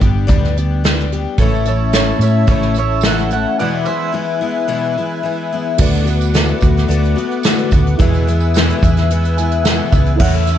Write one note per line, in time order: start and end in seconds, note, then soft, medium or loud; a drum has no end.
0.01 0.26 G1 medium
0.01 0.28 G3 soft
0.01 0.27 B3 medium
0.01 0.27 D4 medium
0.01 0.27 G4 medium
0.01 kick medium
0.01 closed hi-hat medium
0.27 1.25 D2 medium
0.27 0.56 G2 medium
0.27 0.55 D3 medium
0.27 0.56 G3 medium
0.27 0.56 B3 medium
0.27 0.56 D4 medium
0.27 0.55 G4 loud
0.27 kick loud
0.27 closed hi-hat medium
0.44 snare soft
0.57 0.83 G3 soft
0.57 0.83 B3 medium
0.57 0.83 D4 medium
0.57 0.84 G4 medium
0.57 closed hi-hat medium
0.84 1.11 G3 medium
0.84 1.11 B3 medium
0.84 1.12 D4 medium
0.84 1.11 G4 medium
0.84 snare loud
0.84 closed hi-hat medium
0.99 snare soft
1.12 1.40 G3 soft
1.12 1.40 B3 medium
1.12 1.40 D4 medium
1.12 1.39 G4 medium
1.12 closed hi-hat medium
1.38 2.11 A1 loud
1.38 1.67 A2 medium
1.38 1.67 E3 medium
1.38 1.67 A3 medium
1.38 1.67 C#4 medium
1.38 3.56 E4 medium
1.38 1.64 A4 medium
1.38 3.56 C#5 medium
1.38 1.66 C#5 medium
1.38 3.56 A5 medium
1.38 kick loud
1.38 closed hi-hat loud
1.38 tambourine soft
1.42 1.67 E4 medium
1.65 1.95 C#4 medium
1.65 1.95 E4 medium
1.65 1.92 A4 medium
1.65 1.94 C#5 medium
1.65 closed hi-hat medium
1.65 tambourine medium
1.70 1.95 A3 soft
1.93 2.22 E3 medium
1.93 2.22 A3 medium
1.93 2.22 C#4 medium
1.93 2.20 A4 medium
1.93 2.21 C#5 medium
1.93 snare loud
1.93 closed hi-hat medium
1.93 tambourine medium
1.97 2.21 E4 medium
2.19 2.44 A2 medium
2.19 2.47 C#4 medium
2.19 2.48 E4 medium
2.19 2.47 C#5 medium
2.19 2.48 E5 medium
2.19 closed hi-hat medium
2.19 tambourine medium
2.23 2.47 A3 soft
2.47 3.44 A1 medium
2.47 2.75 A2 medium
2.47 2.76 E3 medium
2.47 2.76 A3 medium
2.47 2.76 C#4 loud
2.47 2.76 E4 medium
2.47 2.75 C#5 medium
2.47 2.76 E5 medium
2.47 kick loud
2.47 closed hi-hat medium
2.47 tambourine medium
2.62 snare soft
2.74 3.04 E4 medium
2.74 3.03 C#5 medium
2.74 closed hi-hat medium
2.74 tambourine medium
2.79 3.04 A3 medium
2.79 3.04 E5 medium
3.01 3.31 E3 medium
3.01 3.32 A3 medium
3.01 snare loud
3.01 closed hi-hat medium
3.01 tambourine loud
3.05 3.31 C#4 medium
3.05 3.30 E4 medium
3.05 3.30 A4 medium
3.05 3.31 F#5 medium
3.18 snare soft
3.31 3.60 A3 soft
3.31 3.59 C#4 soft
3.31 3.59 E4 medium
3.31 3.58 A4 medium
3.31 3.58 F#5 medium
3.31 closed hi-hat medium
3.58 3.87 E2 medium
3.58 3.87 B2 loud
3.58 3.87 E3 medium
3.58 3.87 G#3 medium
3.58 3.87 B3 medium
3.58 5.77 E4 medium
3.58 3.86 E4 loud
3.58 5.77 B4 medium
3.58 3.85 D5 medium
3.58 3.86 F#5 medium
3.58 5.76 G#5 medium
3.85 4.13 B3 medium
3.85 4.13 E4 medium
3.85 4.11 C5 medium
3.85 4.13 E5 loud
3.90 4.11 E3 soft
3.90 4.13 G#3 medium
4.12 4.40 E3 medium
4.12 4.41 G#3 medium
4.12 4.40 B3 medium
4.12 4.40 E4 medium
4.41 4.67 E3 medium
4.41 4.67 G#3 medium
4.41 4.67 B3 medium
4.41 4.68 E4 medium
4.68 4.96 E2 medium
4.68 4.96 B2 medium
4.68 4.96 E3 medium
4.68 4.96 G#3 medium
4.68 4.96 B3 medium
4.68 4.96 E4 loud
4.97 5.22 E3 soft
4.97 5.22 G#3 medium
4.97 5.24 B3 medium
4.97 5.24 E4 medium
5.23 5.51 E3 medium
5.23 5.51 G#3 medium
5.23 5.52 B3 medium
5.23 5.51 E4 medium
5.53 5.79 E3 soft
5.53 5.80 G#3 soft
5.53 5.78 B3 medium
5.53 5.79 E4 medium
5.77 6.52 D2 medium
5.77 6.07 D3 medium
5.77 6.06 A3 medium
5.77 6.05 B3 medium
5.77 7.95 F#4 medium
5.77 6.03 F#4 loud
5.77 7.95 A4 medium
5.77 7.96 B4 medium
5.77 10.17 B4 medium
5.77 7.96 D5 medium
5.77 7.98 F#5 medium
5.77 7.98 D6 medium
5.77 kick loud
5.77 crash loud
5.94 snare soft
5.94 closed hi-hat soft
6.04 6.32 A3 medium
6.04 6.34 B3 medium
6.04 6.33 F#4 medium
6.04 closed hi-hat medium
6.04 tambourine medium
6.21 closed hi-hat soft
6.21 tambourine medium
6.34 6.62 D3 medium
6.34 6.61 A3 medium
6.34 6.62 B3 medium
6.34 6.61 F#4 medium
6.34 snare loud
6.34 closed hi-hat medium
6.34 tambourine loud
6.48 closed hi-hat soft
6.48 tambourine soft
6.61 6.86 D2 medium
6.61 6.89 B3 medium
6.61 6.89 F#4 medium
6.61 kick medium
6.61 closed hi-hat medium
6.61 tambourine medium
6.65 6.88 A3 medium
6.77 snare soft
6.77 closed hi-hat soft
6.88 7.13 D2 loud
6.88 7.16 D3 medium
6.88 7.17 A3 medium
6.88 7.16 B3 medium
6.88 7.15 F#4 medium
6.88 closed hi-hat loud
7.03 closed hi-hat soft
7.03 tambourine soft
7.16 7.45 A3 soft
7.16 7.44 B3 medium
7.16 7.44 F#4 medium
7.16 closed hi-hat medium
7.16 tambourine soft
7.31 closed hi-hat soft
7.43 7.72 D3 medium
7.43 7.72 A3 medium
7.43 7.71 B3 medium
7.43 7.71 F#4 medium
7.43 snare loud
7.43 closed hi-hat loud
7.43 tambourine loud
7.58 closed hi-hat soft
7.71 7.96 D2 medium
7.71 8.00 A3 soft
7.71 7.99 B3 medium
7.71 7.99 F#4 medium
7.71 kick medium
7.71 closed hi-hat medium
7.71 tambourine medium
7.87 closed hi-hat medium
7.97 8.27 E2 loud
7.97 8.72 E2 loud
7.97 8.27 B2 medium
7.97 8.27 E3 medium
7.97 8.27 G#3 medium
7.97 8.27 B3 loud
7.97 10.14 E4 medium
7.97 8.26 E4 loud
7.97 10.15 G#4 medium
7.97 10.16 B4 medium
7.97 9.90 E5 medium
7.97 10.19 G#5 medium
7.97 10.58 E6 medium
7.97 kick loud
7.97 closed hi-hat loud
8.15 closed hi-hat soft
8.27 8.55 E3 medium
8.27 8.55 G#3 medium
8.27 8.55 B3 medium
8.27 8.55 E4 medium
8.27 closed hi-hat medium
8.40 tambourine medium
8.54 8.82 E2 medium
8.54 8.82 B2 medium
8.54 8.83 E3 medium
8.54 8.83 G#3 loud
8.54 8.83 B3 medium
8.54 8.82 E4 medium
8.54 snare loud
8.54 closed hi-hat medium
8.54 tambourine loud
8.70 closed hi-hat medium
8.83 9.79 E2 medium
8.83 9.10 E3 medium
8.83 9.10 G#3 medium
8.83 9.11 B3 medium
8.83 9.10 E4 medium
8.83 kick loud
8.83 closed hi-hat medium
8.83 tambourine medium
8.97 snare soft
8.97 closed hi-hat soft
9.10 9.38 E3 medium
9.10 9.38 G#3 medium
9.10 9.38 B3 medium
9.10 9.38 E4 medium
9.10 closed hi-hat loud
9.24 closed hi-hat medium
9.24 tambourine soft
9.37 9.66 B3 medium
9.37 9.66 E4 medium
9.37 9.62 G#5 medium
9.37 closed hi-hat medium
9.37 tambourine soft
9.41 9.67 E3 medium
9.41 9.67 G#3 medium
9.52 closed hi-hat soft
9.63 9.90 F#5 medium
9.63 snare loud
9.63 closed hi-hat loud
9.63 tambourine loud
9.69 9.94 E2 medium
9.69 9.94 B2 medium
9.69 9.94 E3 medium
9.69 9.94 G#3 medium
9.69 9.94 B3 medium
9.69 9.92 E4 medium
9.91 10.17 C#2 medium
9.91 10.21 B3 medium
9.91 10.20 E4 medium
9.91 10.17 E5 medium
9.91 kick medium
9.91 closed hi-hat medium
9.91 tambourine medium
9.95 10.21 E3 soft
9.95 10.21 G#3 medium
10.06 closed hi-hat medium
10.16 10.58 E4 medium
10.16 10.58 A4 medium
10.16 10.58 C#5 medium
10.16 10.58 E5 medium
10.16 crash loud
10.20 10.58 E2 loud
10.20 10.49 E3 loud
10.20 10.49 A3 medium
10.20 10.33 F#4 medium
10.20 10.58 C#5 medium
10.20 10.58 A5 medium
10.20 kick loud
10.24 10.49 C#4 loud
10.24 10.48 E4 loud
10.33 10.58 A4 medium
10.33 closed hi-hat soft
10.47 10.58 C#4 medium
10.47 10.58 E4 medium
10.47 closed hi-hat medium
10.47 tambourine medium
10.52 10.58 A3 medium